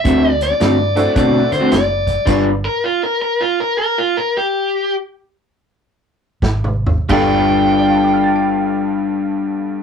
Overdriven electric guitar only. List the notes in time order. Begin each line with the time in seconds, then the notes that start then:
Already playing: E5
0.31 D5
0.43 D5
1.18 D5
1.53 C5
1.72 D5
2.65 A#4
2.84 F4
3.03 A#4
3.22 A#4
3.41 F4
3.60 A#4
3.79 A#4
3.98 F4
4.17 A#4
4.37 G4
7.12 G5